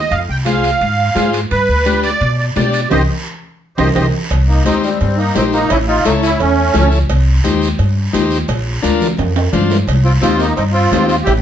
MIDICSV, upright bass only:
0, 0, Header, 1, 2, 480
1, 0, Start_track
1, 0, Tempo, 348635
1, 158, Time_signature, 4, 2, 24, 8
1, 15720, End_track
2, 0, Start_track
2, 0, Title_t, "Upright bass"
2, 0, Program_c, 0, 32
2, 154, Note_on_c, 0, 41, 110
2, 348, Note_off_c, 0, 41, 0
2, 394, Note_on_c, 0, 36, 80
2, 974, Note_off_c, 0, 36, 0
2, 1115, Note_on_c, 0, 44, 85
2, 1502, Note_off_c, 0, 44, 0
2, 1592, Note_on_c, 0, 44, 81
2, 1981, Note_off_c, 0, 44, 0
2, 2083, Note_on_c, 0, 43, 101
2, 2276, Note_off_c, 0, 43, 0
2, 2320, Note_on_c, 0, 38, 82
2, 2899, Note_off_c, 0, 38, 0
2, 3042, Note_on_c, 0, 47, 98
2, 3428, Note_off_c, 0, 47, 0
2, 3529, Note_on_c, 0, 47, 92
2, 3913, Note_off_c, 0, 47, 0
2, 4007, Note_on_c, 0, 36, 102
2, 4186, Note_off_c, 0, 36, 0
2, 5207, Note_on_c, 0, 36, 95
2, 5387, Note_off_c, 0, 36, 0
2, 5439, Note_on_c, 0, 36, 96
2, 5623, Note_off_c, 0, 36, 0
2, 5929, Note_on_c, 0, 36, 108
2, 6314, Note_off_c, 0, 36, 0
2, 6897, Note_on_c, 0, 43, 106
2, 7279, Note_off_c, 0, 43, 0
2, 7378, Note_on_c, 0, 34, 95
2, 7759, Note_off_c, 0, 34, 0
2, 7855, Note_on_c, 0, 33, 113
2, 8237, Note_off_c, 0, 33, 0
2, 8336, Note_on_c, 0, 37, 80
2, 8718, Note_off_c, 0, 37, 0
2, 8817, Note_on_c, 0, 40, 101
2, 9198, Note_off_c, 0, 40, 0
2, 9289, Note_on_c, 0, 37, 105
2, 9673, Note_off_c, 0, 37, 0
2, 9774, Note_on_c, 0, 36, 118
2, 10156, Note_off_c, 0, 36, 0
2, 10247, Note_on_c, 0, 39, 84
2, 10631, Note_off_c, 0, 39, 0
2, 10724, Note_on_c, 0, 43, 98
2, 11109, Note_off_c, 0, 43, 0
2, 11206, Note_on_c, 0, 39, 91
2, 11590, Note_off_c, 0, 39, 0
2, 11681, Note_on_c, 0, 34, 113
2, 12067, Note_off_c, 0, 34, 0
2, 12167, Note_on_c, 0, 38, 82
2, 12549, Note_off_c, 0, 38, 0
2, 12644, Note_on_c, 0, 41, 113
2, 13027, Note_off_c, 0, 41, 0
2, 13121, Note_on_c, 0, 43, 103
2, 13505, Note_off_c, 0, 43, 0
2, 13595, Note_on_c, 0, 36, 109
2, 13980, Note_off_c, 0, 36, 0
2, 14079, Note_on_c, 0, 39, 82
2, 14462, Note_off_c, 0, 39, 0
2, 14551, Note_on_c, 0, 43, 102
2, 14937, Note_off_c, 0, 43, 0
2, 15029, Note_on_c, 0, 39, 100
2, 15415, Note_off_c, 0, 39, 0
2, 15513, Note_on_c, 0, 33, 118
2, 15720, Note_off_c, 0, 33, 0
2, 15720, End_track
0, 0, End_of_file